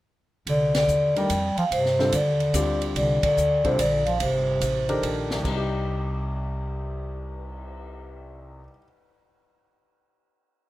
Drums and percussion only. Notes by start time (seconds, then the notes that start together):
0.47 ride
0.75 snare, ride
0.88 hi-hat pedal
1.16 ride
1.30 hi-hat pedal, ride
1.57 ride
1.72 ride
1.86 snare
1.99 snare
2.12 hi-hat pedal, ride
2.40 ride
2.54 hi-hat pedal, ride
2.82 ride
2.96 ride
3.23 kick, ride
3.37 hi-hat pedal
3.65 kick, ride
3.79 hi-hat pedal, ride
4.06 ride
4.20 ride
4.61 hi-hat pedal, ride
4.89 ride
5.03 ride
5.31 snare
5.45 kick, crash
5.72 cymbal swell